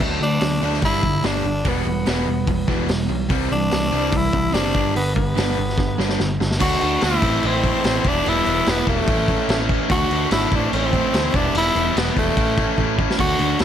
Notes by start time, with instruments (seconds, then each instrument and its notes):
0.00 picked electric bass D2, overdriven electric guitar D3 F#3 A3 D4
0.20 picked electric bass D2, overdriven electric guitar D3 F#3 A3, tenor saxophone D4
0.41 picked electric bass D2, overdriven electric guitar D3 F#3 A3, snare, open hi-hat
0.61 picked electric bass D2, overdriven electric guitar D3 F#3 A3 D4
0.73 snare
0.82 picked electric bass G1, overdriven electric guitar G2 D3 G3, tenor saxophone E4, kick, open hi-hat
1.03 picked electric bass G1, overdriven electric guitar G2 D3, kick
1.23 picked electric bass G1, overdriven electric guitar G2 D3 G3, tenor saxophone D4, snare, open hi-hat
1.44 picked electric bass G1, overdriven electric guitar G2 D3
1.64 picked electric bass E1, overdriven electric guitar E2 B2 E3 G3 B3, kick, open hi-hat
1.69 tenor saxophone B3
1.85 picked electric bass E1, overdriven electric guitar E2 B2 E3 G3
2.06 picked electric bass E1, overdriven electric guitar E2 B2 E3 G3 B3, snare, open hi-hat
2.27 picked electric bass E1, overdriven electric guitar E2 B2 E3 G3
2.47 picked electric bass E1, overdriven electric guitar E2 B2 E3 G3, kick, open hi-hat
2.67 picked electric bass E1, overdriven electric guitar E2 B2 E3 G3 B3, kick, snare
2.88 picked electric bass E1, overdriven electric guitar E2 B2 E3 G3, snare, open hi-hat
3.09 picked electric bass B1, overdriven electric guitar E2 B2 E3 G3
3.29 picked electric bass C2, overdriven electric guitar C3 E3 G3 C4, kick, open hi-hat
3.50 picked electric bass C2, overdriven electric guitar C3 E3 G3, tenor saxophone D4
3.71 picked electric bass C2, overdriven electric guitar C3 E3 G3, snare, open hi-hat
3.92 picked electric bass C2, overdriven electric guitar C3 E3 G3 C4
4.12 picked electric bass C2, overdriven electric guitar C3 E3 G3, kick, open hi-hat
4.16 tenor saxophone E4
4.33 picked electric bass C2, overdriven electric guitar C3 E3 G3, kick
4.54 picked electric bass F#1, overdriven electric guitar C3 E3 G3 C4, tenor saxophone D4, snare, open hi-hat
4.74 picked electric bass G1, overdriven electric guitar G2 D3 G3, kick
4.95 picked electric bass G1, overdriven electric guitar G2 D3, tenor saxophone B3, open hi-hat
5.16 picked electric bass G1, overdriven electric guitar G2 D3, tenor saxophone B3, kick
5.37 picked electric bass G1, overdriven electric guitar G2 D3 G3, snare, open hi-hat
5.58 picked electric bass G1, overdriven electric guitar G2 D3
5.69 snare
5.78 picked electric bass G1, overdriven electric guitar G2 D3, kick, snare
5.98 picked electric bass G1, overdriven electric guitar G2 D3 G3, snare
6.09 snare
6.19 picked electric bass G1, overdriven electric guitar G2 D3, snare
6.40 picked electric bass G1, overdriven electric guitar G2 D3, snare
6.51 snare
6.59 picked electric bass D2, overdriven electric guitar D3 A3 D4 F#4, tenor saxophone F#4, kick, crash
6.80 picked electric bass D2, overdriven electric guitar A3 D4 F#4, crash
7.00 picked electric bass D2, overdriven electric guitar D3 A3 D4 F#4, tenor saxophone E4, snare, crash
7.21 picked electric bass A1, overdriven electric guitar A2 E3 A3 C4 E4, kick, crash
7.42 picked electric bass A1, overdriven electric guitar E3 A3 C4 E4, tenor saxophone C4, crash
7.63 overdriven electric guitar A2 E3 A3 C4 E4, kick, crash
7.83 picked electric bass A1, overdriven electric guitar E3 A3 C4 E4, snare, crash
8.05 picked electric bass E1, overdriven electric guitar E2 B2 E3 G3 B3 E4, tenor saxophone D4, kick, crash
8.24 picked electric bass E1, overdriven electric guitar E2 B2 E3 G3 B3 E4, crash
8.29 tenor saxophone E4
8.45 picked electric bass E1, overdriven electric guitar E3 G3 B3 E4, crash
8.65 picked electric bass E1, overdriven electric guitar E2 B2 E3 G3 B3 E4, snare, crash
8.70 tenor saxophone B3
8.87 picked electric bass E1, overdriven electric guitar E3 G3 B3 E4, tenor saxophone A3, kick, crash
9.08 picked electric bass A1, overdriven electric guitar A2 E3 A3 C#4 E4, kick, crash
9.28 overdriven electric guitar A2 E3 A3 C#4 E4, kick, crash
9.49 picked electric bass A1, overdriven electric guitar E3 A3 C#4, snare, crash
9.53 overdriven electric guitar E4
9.69 overdriven electric guitar C#4 E4, kick, crash
9.74 overdriven electric guitar A3
9.89 picked electric bass D2, overdriven electric guitar D3 A3 D4, tenor saxophone F#4, kick, crash
9.94 overdriven electric guitar F#4
10.11 picked electric bass D2, overdriven electric guitar A3 D4 F#4, crash
10.31 picked electric bass G#1, overdriven electric guitar D3 A3 D4, tenor saxophone E4, snare, crash
10.35 overdriven electric guitar F#4
10.52 picked electric bass A1, overdriven electric guitar A2 E3 A3 C4 E4, tenor saxophone D4, kick, crash
10.72 picked electric bass A1, overdriven electric guitar E3 A3 C4 E4, tenor saxophone C4, crash
10.93 overdriven electric guitar A2 E3 A3 C4 E4, kick, crash
11.13 picked electric bass D2, overdriven electric guitar E3 A3 C4 E4, snare, crash
11.33 picked electric bass E1, overdriven electric guitar E2 B2 E3 G3 B3 E4, tenor saxophone D4, kick, crash
11.54 picked electric bass E1, overdriven electric guitar E2 B2 E3 G3 B3 E4, crash
11.58 tenor saxophone E4
11.74 picked electric bass E1, overdriven electric guitar E3 G3 B3 E4, crash
11.95 picked electric bass E1, overdriven electric guitar E2 B2 E3 G3 B3 E4, snare, crash
11.99 tenor saxophone B3
12.16 picked electric bass E1, overdriven electric guitar E3 G3 B3 E4, tenor saxophone A3, kick, crash
12.36 picked electric bass A1, overdriven electric guitar A2 E3 A3 C#4 E4, kick, crash
12.57 overdriven electric guitar A2 E3 A3 C#4 E4, kick, crash
12.77 picked electric bass A1, overdriven electric guitar E3 A3 C#4 E4, kick
12.98 overdriven electric guitar A3 C#4 E4, kick
13.10 snare
13.19 picked electric bass D2, overdriven electric guitar D3 F#3 A3 D4 F#4, tenor saxophone F#4, kick, crash
13.39 picked electric bass D2, overdriven electric guitar D3 F#3 A3 D4 F#4, crash
13.59 picked electric bass D2, overdriven electric guitar D3 F#3 A3 D4, tenor saxophone E4, snare, crash